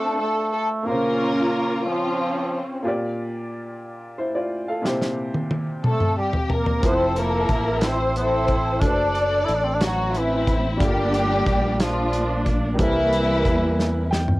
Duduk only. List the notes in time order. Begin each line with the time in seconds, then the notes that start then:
Already playing: A3
0.21 A3
0.88 A#3
1.87 F3
5.84 A3
6.17 G3
6.51 A#3
6.84 C4
7.18 A#3
7.77 B3
7.84 C4
8.17 C4
8.81 D4
9.44 E4
9.55 D4
9.65 C4
9.75 D4
9.84 F#3
10.19 E3
10.84 G3
11.84 F3
12.74 D#3
12.79 E3